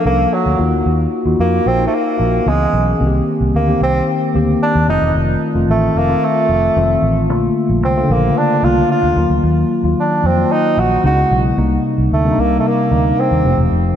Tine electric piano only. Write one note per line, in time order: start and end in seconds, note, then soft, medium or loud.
0.00 0.05 F3 medium
0.00 0.05 A#3 medium
0.00 0.12 D4 medium
0.00 0.06 A4 medium
0.05 0.43 F3 medium
0.05 0.44 A#3 medium
0.05 0.12 C#4 medium
0.05 0.44 A4 medium
0.12 0.47 D4 medium
0.58 1.13 A#3 medium
0.58 1.13 D#4 medium
0.58 1.12 F4 medium
0.58 1.13 F#4 medium
1.26 1.64 A#3 medium
1.26 1.64 D#4 medium
1.26 1.64 F4 medium
1.26 1.65 F#4 medium
1.79 2.27 A#3 medium
1.79 2.27 D#4 medium
1.79 2.27 F4 medium
1.79 2.28 F#4 medium
2.46 2.85 E3 medium
2.46 2.85 B3 medium
2.46 2.85 C#4 medium
2.46 2.85 G#4 medium
3.00 3.48 D#3 medium
3.00 3.48 A#3 medium
3.00 3.48 C4 medium
3.00 3.07 F#4 medium
3.07 3.51 G4 medium
3.67 4.15 D#3 medium
3.67 4.15 A#3 medium
3.67 4.15 C4 medium
3.67 4.16 G4 medium
4.34 4.72 D#3 medium
4.34 4.73 A#3 medium
4.34 4.73 C4 medium
4.34 4.73 G4 loud
4.88 5.41 D#3 medium
4.88 5.42 A3 medium
4.88 5.42 C4 medium
4.88 5.42 F4 medium
5.54 5.93 D#3 medium
5.54 5.93 A3 medium
5.54 5.93 C4 medium
5.54 5.93 F4 medium
6.08 6.56 D#3 medium
6.08 6.56 A3 medium
6.08 6.56 C4 medium
6.08 6.56 F4 medium
6.76 7.14 D#3 medium
6.76 6.82 G3 soft
6.76 7.14 C4 medium
6.76 7.14 F4 medium
6.83 7.17 A3 medium
7.29 7.77 D3 medium
7.29 7.77 A3 medium
7.29 7.77 A#3 medium
7.29 7.77 F4 medium
7.96 8.03 C#3 medium
7.96 8.44 A3 medium
7.96 8.44 A#3 medium
7.96 8.44 F4 medium
8.03 8.47 D3 medium
8.63 9.01 D3 medium
8.63 9.02 A3 medium
8.63 9.02 A#3 medium
8.63 9.02 F4 medium
9.16 9.70 D#3 medium
9.16 9.70 F#3 medium
9.16 9.70 A#3 medium
9.16 9.70 F4 medium
9.83 10.22 D#3 medium
9.83 10.22 F#3 medium
9.83 10.22 A#3 medium
9.83 10.22 F4 medium
10.36 10.84 D#3 medium
10.36 10.85 F#3 medium
10.36 10.85 A#3 medium
10.36 10.85 F4 medium
11.04 11.42 C#3 medium
11.04 11.42 G#3 medium
11.04 11.42 B3 medium
11.04 11.11 D#4 medium
11.11 11.46 E4 medium
11.57 12.05 C3 medium
11.57 12.05 G3 medium
11.57 12.06 A#3 medium
11.57 12.06 D#4 medium
12.24 12.72 C3 medium
12.24 12.72 G3 medium
12.24 12.72 A#3 medium
12.24 12.31 D4 medium
12.32 12.76 D#4 medium
12.91 13.29 C3 medium
12.91 13.29 G3 medium
12.91 13.30 A#3 medium
12.91 13.30 D#4 medium
13.44 13.96 C3 medium
13.44 13.96 F3 medium
13.44 13.96 A3 medium
13.44 13.52 D4 medium
13.52 13.96 D#4 medium